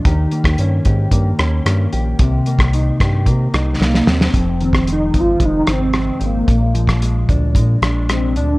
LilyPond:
<<
  \new Staff \with { instrumentName = "Soft synth lead" } { \time 4/4 \key f \minor \tempo 4 = 112 r1 | r2. bes8 c'8~ | c'8 c'8 ees'8 f'8 ees'8 c'4 bes8~ | bes4. r4. c'8 d'8 | }
  \new Staff \with { instrumentName = "Clean electric guitar" } { \time 4/4 \key f \minor <ees g'>8 bes8 des'8 g'8 bes8 des'8 bes8 g'8 | <c g'>8 bes8 ees'8 g'8 bes8 ees'8 bes8 g'8 | f,8 ees8 aes8 c'8 aes8 c'8 aes8 c'8 | bes,8 f8 aes8 d'8 aes8 d'8 aes8 d'8 | }
  \new Staff \with { instrumentName = "Analog synth bass" } { \clef bass \time 4/4 \key f \minor ees,8 r16 ees,16 g,8 aes,8 g,8 ees,8 g,8 bes,,8 | c,8 r16 c,8. g,8 c8 c,8 c,8 ees,8 | f,,4. aes,,8 f,,8 aes,,4 aes,,8 | bes,,4. d,8 bes,8 bes,,4 d,8 | }
  \new DrumStaff \with { instrumentName = "Drums" } \drummode { \time 4/4 <hh bd>8 hh16 <bd ss>16 hh8 <hh bd>8 <hh bd>8 <hh ss>8 <hh ss>8 hh8 | <hh bd>8 hh16 <bd ss>16 hh8 <hh bd ss>8 <hh bd>8 <hh ss>8 sn16 sn16 sn16 sn16 | <hh bd>8 hh16 <bd ss>16 hh8 <hh bd>8 <hh bd>8 <hh ss>8 <hh ss>8 hh8 | <hh bd>8 hh16 <bd ss>16 hh8 <hh bd>8 <hh bd>8 <hh ss>8 <hh ss>8 hh8 | }
>>